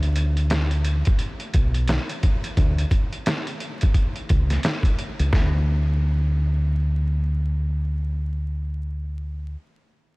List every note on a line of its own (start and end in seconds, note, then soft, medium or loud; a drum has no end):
0.00 1.02 D2 loud
0.00 closed hi-hat medium
0.16 closed hi-hat medium
0.37 closed hi-hat medium
0.50 snare loud
0.50 snare medium
0.50 closed hi-hat medium
0.71 closed hi-hat medium
0.85 closed hi-hat medium
1.05 kick loud
1.05 closed hi-hat medium
1.19 closed hi-hat medium
1.40 closed hi-hat soft
1.54 1.97 B1 medium
1.54 kick loud
1.54 closed hi-hat medium
1.74 closed hi-hat medium
1.88 snare loud
1.88 snare medium
1.88 closed hi-hat medium
2.09 closed hi-hat medium
2.23 kick loud
2.23 closed hi-hat medium
2.44 closed hi-hat medium
2.57 2.84 D2 loud
2.57 kick loud
2.57 closed hi-hat medium
2.78 closed hi-hat medium
2.91 kick medium
2.91 closed hi-hat medium
3.13 closed hi-hat medium
3.26 snare loud
3.26 snare medium
3.26 closed hi-hat medium
3.47 closed hi-hat medium
3.60 closed hi-hat medium
3.81 kick medium
3.81 closed hi-hat medium
3.94 kick medium
3.94 closed hi-hat medium
4.16 closed hi-hat soft
4.29 4.57 C#2 medium
4.29 kick loud
4.29 closed hi-hat medium
4.50 snare soft
4.50 closed hi-hat medium
4.63 snare loud
4.63 snare medium
4.63 closed hi-hat medium
4.83 kick medium
4.83 closed hi-hat medium
4.99 closed hi-hat medium
5.19 5.30 C#2 medium
5.19 closed hi-hat medium
5.33 9.55 D2 medium
5.33 kick medium
5.33 snare medium